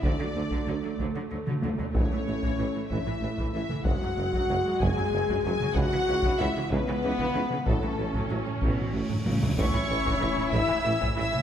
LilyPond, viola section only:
\new Staff \with { instrumentName = "Viola section" } { \clef bass \time 6/8 \key a \major \tempo 4. = 63 << { a2.~ | a2. | gis2.~ | gis2. |
cis'2~ cis'8 r8 | e'2. | } \\ { fis16 fis16 fis16 fis16 fis16 fis16 fis16 fis16 fis16 fis16 fis16 fis16 | e16 e16 e16 e16 e16 e16 e16 e16 e16 e16 e16 e16 | fis16 fis16 fis16 fis16 fis16 fis16 fis16 fis16 fis16 fis16 fis16 fis16 | e16 e16 e16 e16 e16 e16 e16 e16 e16 e16 e16 e16 |
fis16 fis16 fis16 fis16 fis16 fis16 fis16 fis16 fis16 fis16 fis16 fis16 | e16 e16 e16 e16 e16 e16 e16 e16 e16 e16 e16 e16 | } >> }